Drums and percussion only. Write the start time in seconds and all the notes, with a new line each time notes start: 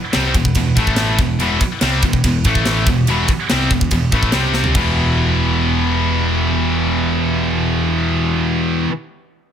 0.13 snare, ride
0.34 kick, ride
0.45 kick
0.55 kick, ride
0.77 kick, ride
0.87 kick
0.96 snare, ride
1.18 kick, ride
1.40 ride
1.61 kick, ride
1.81 snare, ride
2.02 kick, ride
2.13 kick
2.24 kick, ride
2.44 kick, ride
2.55 kick
2.65 snare, ride
2.86 kick, ride
3.07 ride
3.28 kick, ride
3.49 snare, ride
3.70 kick, ride
3.81 kick
3.91 kick, ride
4.12 kick, ride
4.23 kick
4.32 snare, ride
4.54 snare
4.64 floor tom
4.75 kick, crash